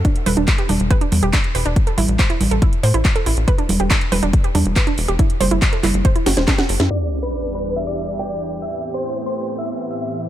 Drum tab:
CC |----------------|----------------|----------------|----------------|
HH |xxoxxxoxxxoxxxox|xxoxxxoxxxoxxxox|xxoxxxoxxxoxxxox|xxoxxxoxxxoxxxo-|
CP |----x-------x---|----x-------x---|----x-------x---|----x-x-----x---|
SD |----------------|----------------|----------------|----------oooo-o|
CG |--o---o---o-----|--o---o---------|--o---o---o-----|--o---o---------|
BD |o---o---o---o---|o---o---o---o---|o---o---o---o---|o---o---o---o---|

CC |x---------------|----------------|
HH |-----x-xx--xxxxx|xx-xxx-xxx-xxxxx|
CP |----------------|----------------|
SD |----------------|----------------|
CG |----------------|----------------|
BD |----------------|----------------|